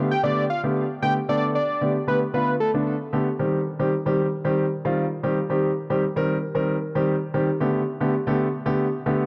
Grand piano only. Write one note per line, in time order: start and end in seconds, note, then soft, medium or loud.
0.00 0.11 D3 medium
0.00 0.11 A3 medium
0.00 0.11 B3 medium
0.00 0.11 G4 medium
0.23 0.43 D3 medium
0.23 0.43 A3 medium
0.23 0.43 B3 medium
0.23 0.43 G4 medium
0.63 0.82 D3 medium
0.63 0.82 A3 medium
0.63 0.83 B3 medium
0.63 0.83 G4 medium
1.02 1.16 D3 medium
1.02 1.16 A3 medium
1.02 1.16 B3 medium
1.02 1.16 G4 medium
1.28 1.54 D3 medium
1.28 1.54 A3 medium
1.28 1.54 B3 medium
1.28 1.54 A4 medium
1.81 1.95 D3 medium
1.81 1.95 A3 medium
1.81 1.95 B3 medium
1.81 1.95 G4 medium
2.07 2.21 D3 medium
2.07 2.21 A3 medium
2.07 2.21 B3 medium
2.07 2.21 G4 medium
2.34 2.53 D3 medium
2.34 2.54 A3 medium
2.34 2.54 B3 medium
2.34 2.54 F4 medium
2.74 2.93 D3 medium
2.74 2.93 A3 medium
2.74 2.93 B3 medium
2.74 2.93 D4 medium
3.13 3.26 D3 medium
3.13 3.26 A3 medium
3.13 3.27 B3 medium
3.13 3.27 G4 medium
3.39 3.59 D#3 medium
3.39 3.59 G3 medium
3.39 3.59 C4 medium
3.39 3.59 G4 medium
3.79 3.92 D#3 medium
3.79 3.92 G3 medium
3.79 3.92 C4 medium
3.79 3.92 G4 loud
4.06 4.25 D#3 medium
4.06 4.25 G3 medium
4.06 4.25 C4 medium
4.06 4.25 G4 medium
4.44 4.64 D#3 medium
4.44 4.64 G3 medium
4.44 4.64 C4 medium
4.44 4.64 G4 loud
4.85 5.04 D#3 medium
4.85 5.04 G3 medium
4.85 5.04 C4 medium
4.85 5.04 F4 loud
5.23 5.37 D#3 medium
5.23 5.37 G3 medium
5.23 5.37 C4 medium
5.23 5.37 G4 loud
5.50 5.69 D#3 medium
5.50 5.69 G3 medium
5.50 5.70 C4 medium
5.50 5.70 G4 medium
5.90 6.02 D#3 medium
5.90 6.02 G3 medium
5.90 6.02 C4 medium
5.90 6.02 G4 medium
6.16 6.35 D#3 medium
6.16 6.35 G3 medium
6.16 6.35 C4 medium
6.16 6.35 A#4 loud
6.55 6.74 D#3 medium
6.55 6.75 G3 medium
6.55 6.75 C4 medium
6.55 6.75 A#4 loud
6.95 7.14 D#3 medium
6.95 7.14 G3 medium
6.95 7.14 C4 medium
6.95 7.14 G4 loud
7.34 7.48 D#3 medium
7.34 7.48 G3 medium
7.34 7.48 C4 medium
7.34 7.48 G4 medium
7.60 7.80 D3 medium
7.60 7.80 A3 medium
7.60 7.80 B3 medium
7.60 7.80 G4 medium
8.00 8.13 D3 medium
8.00 8.13 A3 medium
8.00 8.13 B3 medium
8.00 8.13 G4 loud
8.27 8.46 D3 medium
8.27 8.46 A3 medium
8.27 8.46 B3 medium
8.27 8.46 G4 loud
8.66 8.85 D3 medium
8.66 8.85 A3 medium
8.66 8.85 B3 medium
8.66 8.85 G4 loud
9.06 9.25 D3 medium
9.06 9.25 A3 medium
9.06 9.25 B3 medium
9.06 9.25 G4 loud